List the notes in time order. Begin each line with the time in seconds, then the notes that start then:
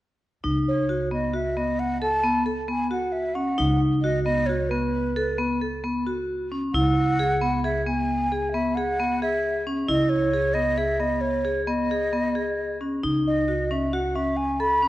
0.44 C#2 D#4
0.68 C#5
0.89 F#4
1.11 B3 D#5
1.33 F#4 E5
1.57 B3 D#5
1.79 F#5
2.02 A4 A5
2.23 B3
2.46 A4
2.68 B3 G#5
2.91 F#4 F#5
3.12 E5
3.35 C#4 F#5
3.58 C#2 D#4
4.02 F#4 D#5
4.24 B3 D#5
4.46 F#4 C#5
4.69 B3 B4
5.16 A4
5.38 B3
5.61 A4
5.84 B3
6.06 F#4
6.52 C#4
6.73 C#2 E4 F#5
7.19 G#4
7.41 B3
7.64 G#4 E5
7.87 B3 G#5
8.32 G#4
8.52 B3 E5
8.75 G#4 F#5
9.00 B3
9.22 G#4 E5
9.67 C#4
9.88 C#2 E4 D#5
10.09 C#5
10.34 G#4
10.54 B3 D#5
10.78 G#4 E5
11.00 B3 D#5
11.21 C#5
11.45 G#4
11.66 B3 D#5
11.91 G#4
12.13 B3
12.35 G#4
12.81 C#4
13.03 C#2 D#4
13.27 D#5
13.48 F#4
13.71 C#4 E5
13.93 F#4 F#5
14.15 C#4 E5
14.37 G#5
14.60 A4 B5
14.82 C#4